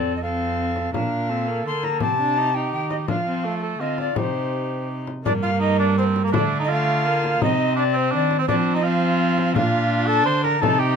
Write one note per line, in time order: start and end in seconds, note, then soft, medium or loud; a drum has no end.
0.00 0.93 F2 medium
0.00 0.21 C4 medium
0.00 0.22 A4 medium
0.00 0.13 D5 medium
0.16 0.19 D#5 medium
0.22 0.92 C4 medium
0.22 0.92 A4 medium
0.22 0.92 F5 medium
0.76 frame drum soft
0.93 1.66 A#2 medium
0.93 1.31 D4 medium
0.93 1.31 A#4 medium
0.93 1.63 F5 loud
0.93 frame drum medium
1.29 1.49 C4 medium
1.29 2.03 A4 medium
1.48 1.65 A#3 medium
1.65 2.03 D3 medium
1.65 2.03 A#3 medium
1.65 1.86 C6 loud
1.83 2.00 A#5 medium
1.83 frame drum soft
2.00 2.72 C3 medium
2.00 2.19 C4 medium
2.00 3.08 G4 medium
2.00 2.56 A5 loud
2.00 frame drum medium
2.20 2.39 D4 medium
2.38 2.55 D#4 medium
2.54 3.08 D#4 medium
2.54 2.71 G5 medium
2.72 3.09 D#3 medium
2.72 2.89 G5 medium
2.90 2.96 D#5 medium
2.90 frame drum soft
3.07 3.79 F3 medium
3.07 3.15 D4 medium
3.07 3.46 F4 medium
3.07 3.54 F5 medium
3.07 frame drum medium
3.27 3.46 C4 medium
3.44 3.82 A3 medium
3.44 3.62 A4 medium
3.62 3.82 A4 medium
3.79 4.15 D3 soft
3.79 4.15 C4 medium
3.79 4.18 F4 medium
3.79 3.97 D#5 medium
3.98 4.17 D5 medium
3.98 frame drum soft
4.16 5.05 C3 medium
4.16 5.05 D#4 medium
4.16 5.07 G4 medium
4.16 4.88 C5 medium
4.16 frame drum medium
5.07 frame drum soft
5.24 6.35 G2 medium
5.24 6.29 A#3 medium
5.24 5.33 D4 medium
5.24 5.31 D5 loud
5.24 frame drum medium
5.42 5.51 F4 medium
5.42 5.60 F5 loud
5.60 5.78 D#4 medium
5.60 5.78 D#5 loud
5.79 5.97 D4 loud
5.79 5.85 D5 medium
5.98 6.23 C4 medium
5.98 6.04 C5 loud
6.16 frame drum soft
6.24 6.32 A#3 medium
6.24 6.31 A#4 loud
6.32 7.40 D3 medium
6.32 6.68 A3 medium
6.32 6.59 D4 medium
6.32 frame drum medium
6.37 6.43 D5 loud
6.60 6.70 D#4 medium
6.64 6.71 D#5 loud
6.68 7.06 A3 medium
6.68 7.43 F4 loud
6.68 7.41 F5 loud
7.05 7.43 A#3 medium
7.24 frame drum soft
7.41 8.15 C3 medium
7.41 8.48 C4 medium
7.41 7.75 D#4 medium
7.41 7.77 D#5 loud
7.41 frame drum medium
7.76 7.84 D4 medium
7.76 7.97 D5 loud
7.94 8.13 C4 loud
7.94 8.13 C5 loud
8.12 8.48 D#3 medium
8.12 8.38 D4 loud
8.12 8.39 D5 loud
8.31 frame drum medium
8.39 8.47 C4 medium
8.39 8.47 C5 loud
8.48 9.56 F3 loud
8.48 8.83 C4 medium
8.48 8.76 D4 loud
8.48 8.54 D5 loud
8.48 frame drum medium
8.74 8.84 D#4 medium
8.74 8.87 D#5 loud
8.83 9.56 C4 medium
8.83 9.54 F4 loud
8.83 9.54 F5 loud
9.38 frame drum medium
9.54 10.27 A#2 medium
9.54 10.60 D4 medium
9.54 10.08 F4 loud
9.54 10.07 F5 loud
9.54 frame drum medium
10.07 10.25 A4 loud
10.07 10.28 A5 loud
10.25 10.62 D3 medium
10.25 10.43 C5 loud
10.25 10.46 C6 loud
10.44 10.61 A#4 loud
10.44 10.63 A#5 loud
10.44 frame drum soft
10.61 10.96 C3 loud
10.61 10.96 D#4 medium
10.61 10.80 A4 loud
10.61 10.81 A5 loud
10.61 frame drum medium
10.79 10.96 G4 loud
10.79 10.96 G5 loud